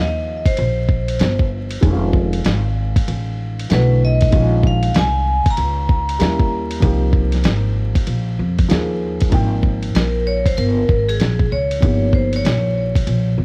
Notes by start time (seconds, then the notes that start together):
Already playing: D#2 F3 A#3 D#4 G4 D#5
0.46 C5, muted upright bass stroke, kick, ride
0.57 A#1, ride
0.89 kick
1.08 ride
1.20 G1, snare, hi-hat pedal, ride
1.39 kick
1.71 ride
1.81 F1 D#3 G#3 C#4, kick, ride
1.86 D#4
1.92 F4
2.13 kick
2.33 ride
2.45 G#1, snare, hi-hat pedal, ride
2.96 muted upright bass stroke, kick, ride
3.08 A1, ride
3.59 ride
3.69 B1 E3 A3 C#4 F#4 B4, snare, hi-hat pedal, ride
3.77 D3
4.04 D#5
4.21 kick, ride
4.31 A#1 D#3 G#3 C#4, kick, ride
4.35 F4
4.63 F5, kick
4.83 ride
4.94 C2, snare, hi-hat pedal, ride
4.99 G#5
5.46 muted upright bass stroke, kick, ride
5.50 A#5
5.57 C#2, ride
5.89 kick
6.09 ride
6.19 D#2 G3 A#3 C#4 E4, snare, hi-hat pedal, ride
6.40 kick
6.71 ride
6.80 C2 F3 A#3 D#4, kick, ride
6.85 G4
7.13 kick
7.32 snare, ride
7.44 G#1, snare, hi-hat pedal, ride
7.95 muted upright bass stroke, kick, ride
8.07 A#1, ride
8.39 F2
8.58 kick, ride
8.68 D#2 F3 A#3 D#4 G#4, snare, hi-hat pedal, ride
9.20 kick, ride
9.30 G#1 F3 A#3 D#4, kick, ride
9.34 G5
9.63 kick
9.83 ride
9.95 A#1 A#4, snare, hi-hat pedal, ride
10.27 C#5
10.46 C5, kick, ride
10.57 G1 A#4, ride
10.89 G#1, kick
11.09 G#4, ride
11.20 A#1, snare, hi-hat pedal, ride
11.39 kick
11.52 C#2 C#5
11.71 ride
11.80 G1 F3 A#3 D#4, kick, ride
11.85 G4
12.13 C5, kick
12.33 C#5, ride
12.45 A#1, snare, hi-hat pedal, ride
12.95 kick, ride
13.07 A#1, ride
13.38 G1